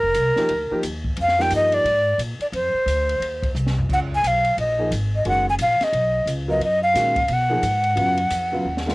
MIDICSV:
0, 0, Header, 1, 6, 480
1, 0, Start_track
1, 0, Tempo, 340329
1, 1647, Time_signature, 4, 2, 24, 8
1, 12620, End_track
2, 0, Start_track
2, 0, Title_t, "Flute"
2, 0, Program_c, 0, 73
2, 0, Note_on_c, 0, 70, 79
2, 1121, Note_off_c, 0, 70, 0
2, 1715, Note_on_c, 0, 77, 97
2, 1995, Note_on_c, 0, 79, 104
2, 2016, Note_off_c, 0, 77, 0
2, 2152, Note_off_c, 0, 79, 0
2, 2195, Note_on_c, 0, 75, 101
2, 2455, Note_on_c, 0, 74, 105
2, 2476, Note_off_c, 0, 75, 0
2, 3102, Note_off_c, 0, 74, 0
2, 3407, Note_on_c, 0, 74, 79
2, 3484, Note_off_c, 0, 74, 0
2, 3588, Note_on_c, 0, 72, 84
2, 4960, Note_off_c, 0, 72, 0
2, 5546, Note_on_c, 0, 78, 94
2, 5631, Note_off_c, 0, 78, 0
2, 5853, Note_on_c, 0, 80, 98
2, 6026, Note_on_c, 0, 77, 93
2, 6047, Note_off_c, 0, 80, 0
2, 6475, Note_off_c, 0, 77, 0
2, 6486, Note_on_c, 0, 75, 85
2, 6913, Note_off_c, 0, 75, 0
2, 7276, Note_on_c, 0, 75, 74
2, 7420, Note_off_c, 0, 75, 0
2, 7446, Note_on_c, 0, 78, 99
2, 7704, Note_off_c, 0, 78, 0
2, 7751, Note_on_c, 0, 80, 97
2, 7822, Note_off_c, 0, 80, 0
2, 7925, Note_on_c, 0, 77, 94
2, 8233, Note_on_c, 0, 75, 84
2, 8255, Note_off_c, 0, 77, 0
2, 8871, Note_off_c, 0, 75, 0
2, 9172, Note_on_c, 0, 75, 79
2, 9328, Note_off_c, 0, 75, 0
2, 9367, Note_on_c, 0, 75, 86
2, 9625, Note_off_c, 0, 75, 0
2, 9633, Note_on_c, 0, 77, 93
2, 10338, Note_on_c, 0, 78, 78
2, 10359, Note_off_c, 0, 77, 0
2, 12620, Note_off_c, 0, 78, 0
2, 12620, End_track
3, 0, Start_track
3, 0, Title_t, "Upright piano"
3, 0, Program_c, 1, 0
3, 526, Note_on_c, 1, 53, 73
3, 533, Note_on_c, 1, 58, 67
3, 535, Note_on_c, 1, 63, 74
3, 546, Note_on_c, 1, 67, 85
3, 680, Note_off_c, 1, 53, 0
3, 684, Note_off_c, 1, 58, 0
3, 685, Note_off_c, 1, 63, 0
3, 690, Note_off_c, 1, 67, 0
3, 1003, Note_on_c, 1, 58, 63
3, 1004, Note_on_c, 1, 53, 67
3, 1011, Note_on_c, 1, 63, 62
3, 1024, Note_on_c, 1, 67, 88
3, 1159, Note_off_c, 1, 53, 0
3, 1159, Note_off_c, 1, 58, 0
3, 1162, Note_off_c, 1, 63, 0
3, 1169, Note_off_c, 1, 67, 0
3, 1950, Note_on_c, 1, 53, 68
3, 1956, Note_on_c, 1, 58, 61
3, 1964, Note_on_c, 1, 63, 61
3, 1971, Note_on_c, 1, 67, 72
3, 2573, Note_off_c, 1, 53, 0
3, 2576, Note_off_c, 1, 58, 0
3, 2580, Note_off_c, 1, 63, 0
3, 2584, Note_off_c, 1, 67, 0
3, 6747, Note_on_c, 1, 53, 59
3, 6760, Note_on_c, 1, 58, 62
3, 6762, Note_on_c, 1, 63, 60
3, 6769, Note_on_c, 1, 68, 66
3, 6909, Note_off_c, 1, 53, 0
3, 6915, Note_off_c, 1, 58, 0
3, 6916, Note_off_c, 1, 63, 0
3, 6920, Note_off_c, 1, 68, 0
3, 7412, Note_on_c, 1, 51, 62
3, 7413, Note_on_c, 1, 56, 56
3, 7425, Note_on_c, 1, 61, 58
3, 7427, Note_on_c, 1, 66, 66
3, 7677, Note_off_c, 1, 51, 0
3, 7677, Note_off_c, 1, 56, 0
3, 7683, Note_off_c, 1, 61, 0
3, 7684, Note_off_c, 1, 66, 0
3, 9139, Note_on_c, 1, 54, 73
3, 9144, Note_on_c, 1, 59, 61
3, 9147, Note_on_c, 1, 65, 62
3, 9151, Note_on_c, 1, 70, 76
3, 9305, Note_off_c, 1, 54, 0
3, 9308, Note_off_c, 1, 59, 0
3, 9309, Note_off_c, 1, 65, 0
3, 9311, Note_off_c, 1, 70, 0
3, 9785, Note_on_c, 1, 51, 64
3, 9803, Note_on_c, 1, 56, 58
3, 9808, Note_on_c, 1, 66, 66
3, 9810, Note_on_c, 1, 61, 56
3, 10064, Note_off_c, 1, 51, 0
3, 10073, Note_off_c, 1, 56, 0
3, 10075, Note_off_c, 1, 66, 0
3, 10076, Note_off_c, 1, 61, 0
3, 10569, Note_on_c, 1, 53, 66
3, 10576, Note_on_c, 1, 58, 58
3, 10583, Note_on_c, 1, 63, 58
3, 10596, Note_on_c, 1, 68, 71
3, 10741, Note_off_c, 1, 53, 0
3, 10744, Note_off_c, 1, 58, 0
3, 10747, Note_off_c, 1, 63, 0
3, 10754, Note_off_c, 1, 68, 0
3, 11217, Note_on_c, 1, 49, 64
3, 11219, Note_on_c, 1, 54, 54
3, 11237, Note_on_c, 1, 65, 70
3, 11238, Note_on_c, 1, 59, 56
3, 11500, Note_off_c, 1, 49, 0
3, 11501, Note_off_c, 1, 54, 0
3, 11510, Note_off_c, 1, 59, 0
3, 11510, Note_off_c, 1, 65, 0
3, 12013, Note_on_c, 1, 49, 64
3, 12021, Note_on_c, 1, 54, 60
3, 12024, Note_on_c, 1, 59, 58
3, 12037, Note_on_c, 1, 65, 78
3, 12183, Note_off_c, 1, 49, 0
3, 12187, Note_off_c, 1, 54, 0
3, 12188, Note_off_c, 1, 59, 0
3, 12195, Note_off_c, 1, 65, 0
3, 12495, Note_on_c, 1, 51, 69
3, 12509, Note_on_c, 1, 56, 62
3, 12517, Note_on_c, 1, 65, 71
3, 12521, Note_on_c, 1, 61, 60
3, 12620, Note_off_c, 1, 51, 0
3, 12620, Note_off_c, 1, 56, 0
3, 12620, Note_off_c, 1, 61, 0
3, 12620, Note_off_c, 1, 65, 0
3, 12620, End_track
4, 0, Start_track
4, 0, Title_t, "Upright bass"
4, 0, Program_c, 2, 32
4, 46, Note_on_c, 2, 29, 66
4, 196, Note_off_c, 2, 29, 0
4, 213, Note_on_c, 2, 36, 76
4, 488, Note_off_c, 2, 36, 0
4, 691, Note_on_c, 2, 38, 79
4, 966, Note_off_c, 2, 38, 0
4, 1177, Note_on_c, 2, 39, 89
4, 1638, Note_off_c, 2, 39, 0
4, 1659, Note_on_c, 2, 41, 85
4, 2119, Note_off_c, 2, 41, 0
4, 2135, Note_on_c, 2, 43, 86
4, 2590, Note_off_c, 2, 43, 0
4, 2598, Note_on_c, 2, 44, 80
4, 3068, Note_off_c, 2, 44, 0
4, 3076, Note_on_c, 2, 46, 83
4, 3357, Note_off_c, 2, 46, 0
4, 3557, Note_on_c, 2, 41, 86
4, 3838, Note_off_c, 2, 41, 0
4, 4031, Note_on_c, 2, 38, 89
4, 4503, Note_off_c, 2, 38, 0
4, 4509, Note_on_c, 2, 39, 75
4, 4983, Note_off_c, 2, 39, 0
4, 5002, Note_on_c, 2, 36, 90
4, 5469, Note_off_c, 2, 36, 0
4, 5486, Note_on_c, 2, 37, 82
4, 5951, Note_off_c, 2, 37, 0
4, 5966, Note_on_c, 2, 35, 73
4, 6431, Note_off_c, 2, 35, 0
4, 6443, Note_on_c, 2, 34, 74
4, 6910, Note_off_c, 2, 34, 0
4, 6924, Note_on_c, 2, 32, 83
4, 7390, Note_off_c, 2, 32, 0
4, 7409, Note_on_c, 2, 30, 76
4, 7873, Note_off_c, 2, 30, 0
4, 7882, Note_on_c, 2, 34, 78
4, 8160, Note_off_c, 2, 34, 0
4, 8357, Note_on_c, 2, 35, 83
4, 8816, Note_off_c, 2, 35, 0
4, 8824, Note_on_c, 2, 37, 82
4, 9287, Note_off_c, 2, 37, 0
4, 9296, Note_on_c, 2, 42, 75
4, 9776, Note_off_c, 2, 42, 0
4, 9800, Note_on_c, 2, 46, 82
4, 10269, Note_off_c, 2, 46, 0
4, 10278, Note_on_c, 2, 47, 84
4, 10743, Note_off_c, 2, 47, 0
4, 10752, Note_on_c, 2, 44, 84
4, 11225, Note_off_c, 2, 44, 0
4, 11239, Note_on_c, 2, 42, 88
4, 11703, Note_off_c, 2, 42, 0
4, 11711, Note_on_c, 2, 41, 81
4, 12185, Note_off_c, 2, 41, 0
4, 12198, Note_on_c, 2, 39, 73
4, 12620, Note_off_c, 2, 39, 0
4, 12620, End_track
5, 0, Start_track
5, 0, Title_t, "Muted upright bass strokes"
5, 511, Note_on_c, 9, 29, 39
5, 652, Note_off_c, 9, 29, 0
5, 999, Note_on_c, 9, 29, 36
5, 1140, Note_off_c, 9, 29, 0
5, 3373, Note_on_c, 9, 29, 37
5, 3514, Note_off_c, 9, 29, 0
5, 3854, Note_on_c, 9, 29, 41
5, 3995, Note_off_c, 9, 29, 0
5, 8180, Note_on_c, 9, 29, 38
5, 8321, Note_off_c, 9, 29, 0
5, 12620, End_track
6, 0, Start_track
6, 0, Title_t, "Drums"
6, 205, Note_on_c, 9, 44, 56
6, 205, Note_on_c, 9, 51, 73
6, 346, Note_off_c, 9, 44, 0
6, 346, Note_off_c, 9, 51, 0
6, 510, Note_on_c, 9, 38, 42
6, 651, Note_off_c, 9, 38, 0
6, 687, Note_on_c, 9, 51, 58
6, 828, Note_off_c, 9, 51, 0
6, 1172, Note_on_c, 9, 44, 57
6, 1172, Note_on_c, 9, 51, 70
6, 1313, Note_off_c, 9, 44, 0
6, 1313, Note_off_c, 9, 51, 0
6, 1474, Note_on_c, 9, 36, 56
6, 1615, Note_off_c, 9, 36, 0
6, 1645, Note_on_c, 9, 51, 62
6, 1786, Note_off_c, 9, 51, 0
6, 1808, Note_on_c, 9, 38, 31
6, 1949, Note_off_c, 9, 38, 0
6, 1973, Note_on_c, 9, 38, 43
6, 2114, Note_off_c, 9, 38, 0
6, 2122, Note_on_c, 9, 44, 58
6, 2122, Note_on_c, 9, 51, 68
6, 2263, Note_off_c, 9, 44, 0
6, 2263, Note_off_c, 9, 51, 0
6, 2427, Note_on_c, 9, 51, 43
6, 2568, Note_off_c, 9, 51, 0
6, 2616, Note_on_c, 9, 51, 61
6, 2757, Note_off_c, 9, 51, 0
6, 3092, Note_on_c, 9, 44, 55
6, 3092, Note_on_c, 9, 51, 76
6, 3233, Note_off_c, 9, 44, 0
6, 3233, Note_off_c, 9, 51, 0
6, 3393, Note_on_c, 9, 51, 39
6, 3534, Note_off_c, 9, 51, 0
6, 3572, Note_on_c, 9, 51, 57
6, 3713, Note_off_c, 9, 51, 0
6, 4058, Note_on_c, 9, 44, 56
6, 4058, Note_on_c, 9, 51, 70
6, 4199, Note_off_c, 9, 44, 0
6, 4199, Note_off_c, 9, 51, 0
6, 4360, Note_on_c, 9, 51, 46
6, 4501, Note_off_c, 9, 51, 0
6, 4542, Note_on_c, 9, 51, 57
6, 4683, Note_off_c, 9, 51, 0
6, 4830, Note_on_c, 9, 36, 64
6, 4841, Note_on_c, 9, 51, 49
6, 4971, Note_off_c, 9, 36, 0
6, 4982, Note_off_c, 9, 51, 0
6, 5016, Note_on_c, 9, 44, 53
6, 5157, Note_off_c, 9, 44, 0
6, 5169, Note_on_c, 9, 38, 53
6, 5310, Note_off_c, 9, 38, 0
6, 5335, Note_on_c, 9, 43, 60
6, 5476, Note_off_c, 9, 43, 0
6, 5491, Note_on_c, 9, 36, 68
6, 5494, Note_on_c, 9, 49, 65
6, 5632, Note_off_c, 9, 36, 0
6, 5635, Note_off_c, 9, 49, 0
6, 5980, Note_on_c, 9, 44, 65
6, 5980, Note_on_c, 9, 51, 75
6, 6121, Note_off_c, 9, 44, 0
6, 6121, Note_off_c, 9, 51, 0
6, 6269, Note_on_c, 9, 51, 47
6, 6410, Note_off_c, 9, 51, 0
6, 6457, Note_on_c, 9, 51, 58
6, 6598, Note_off_c, 9, 51, 0
6, 6934, Note_on_c, 9, 44, 55
6, 6934, Note_on_c, 9, 51, 74
6, 7075, Note_off_c, 9, 44, 0
6, 7075, Note_off_c, 9, 51, 0
6, 7403, Note_on_c, 9, 51, 53
6, 7544, Note_off_c, 9, 51, 0
6, 7878, Note_on_c, 9, 44, 51
6, 7878, Note_on_c, 9, 51, 83
6, 8019, Note_off_c, 9, 44, 0
6, 8019, Note_off_c, 9, 51, 0
6, 8190, Note_on_c, 9, 51, 46
6, 8193, Note_on_c, 9, 38, 41
6, 8331, Note_off_c, 9, 51, 0
6, 8334, Note_off_c, 9, 38, 0
6, 8366, Note_on_c, 9, 51, 55
6, 8507, Note_off_c, 9, 51, 0
6, 8846, Note_on_c, 9, 44, 54
6, 8846, Note_on_c, 9, 51, 64
6, 8987, Note_off_c, 9, 44, 0
6, 8987, Note_off_c, 9, 51, 0
6, 9324, Note_on_c, 9, 51, 53
6, 9465, Note_off_c, 9, 51, 0
6, 9807, Note_on_c, 9, 44, 60
6, 9807, Note_on_c, 9, 51, 75
6, 9810, Note_on_c, 9, 38, 39
6, 9948, Note_off_c, 9, 44, 0
6, 9948, Note_off_c, 9, 51, 0
6, 9951, Note_off_c, 9, 38, 0
6, 10097, Note_on_c, 9, 36, 51
6, 10099, Note_on_c, 9, 51, 47
6, 10238, Note_off_c, 9, 36, 0
6, 10240, Note_off_c, 9, 51, 0
6, 10269, Note_on_c, 9, 51, 64
6, 10410, Note_off_c, 9, 51, 0
6, 10759, Note_on_c, 9, 44, 55
6, 10759, Note_on_c, 9, 51, 75
6, 10900, Note_off_c, 9, 44, 0
6, 10900, Note_off_c, 9, 51, 0
6, 11052, Note_on_c, 9, 51, 41
6, 11193, Note_off_c, 9, 51, 0
6, 11237, Note_on_c, 9, 51, 60
6, 11378, Note_off_c, 9, 51, 0
6, 11529, Note_on_c, 9, 51, 44
6, 11670, Note_off_c, 9, 51, 0
6, 11712, Note_on_c, 9, 44, 60
6, 11712, Note_on_c, 9, 51, 73
6, 11853, Note_off_c, 9, 44, 0
6, 11853, Note_off_c, 9, 51, 0
6, 12371, Note_on_c, 9, 38, 50
6, 12512, Note_off_c, 9, 38, 0
6, 12534, Note_on_c, 9, 38, 72
6, 12620, Note_off_c, 9, 38, 0
6, 12620, End_track
0, 0, End_of_file